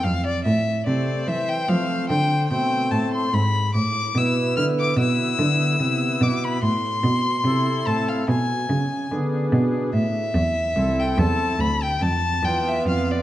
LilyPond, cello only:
\new Staff \with { instrumentName = "Cello" } { \clef bass \time 4/4 \key a \minor \tempo 4 = 73 f,8 a,8 c8 e8 f8 d8 b,8 a,8 | gis,8 a,8 b,8 d8 b,8 d8 c8 b,8 | a,8 b,8 c8 a,8 b,8 cis8 d8 b,8 | a,8 e,8 c,8 e,8 d,8 f,8 e,8 f,8 | }